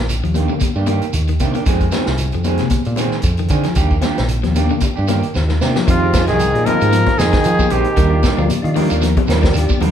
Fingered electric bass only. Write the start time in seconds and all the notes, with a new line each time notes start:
Already playing: A#1
0.23 D#2
0.76 G2
1.14 D#2
1.41 C3
1.67 F2
2.08 C2
2.34 F2
2.86 A#2
3.24 F2
3.50 D3
3.77 D#2
4.19 A#1
4.46 D#2
4.98 G2
5.36 D#2
5.62 C3
5.88 F2
6.29 C2
6.55 A#2
6.82 G#2
7.19 F2
7.46 F3
7.71 A#1
7.97 D#2
8.38 D2
8.64 D#3
8.91 D#2
9.28 D#2
9.55 D#2
9.70 muted fingered electric bass stroke
9.81 D#2